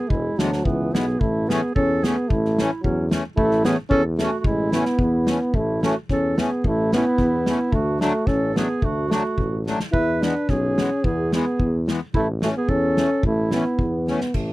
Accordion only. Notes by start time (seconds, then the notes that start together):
0.38 E3 G#3 B3
0.93 E3 G#3 B3
1.49 E3 A3 C#4
2.04 E3 A3 C#4
2.59 E3 A3 C#4
3.11 E3 A3 C#4
3.65 E3 A3 C#4
4.18 E3 A3 C#4
4.71 E3 A3 C#4
5.26 E3 A3 C#4
5.82 E3 A3 C#4
6.37 E3 A3 C#4
6.93 E3 A3 C#4
7.47 E3 A3 C#4
8.00 F#3 A3 D4
8.55 F#3 A3 D4
9.10 F#3 A3 D4
9.67 F#3 A3 D4
10.22 E3 G#3 B3
10.77 E3 G#3 B3
11.33 E3 G#3 B3
11.88 E3 G#3 B3
12.42 E3 A3 C#4
12.98 E3 A3 C#4
13.52 E3 A3 C#4
14.08 E3 A3 C#4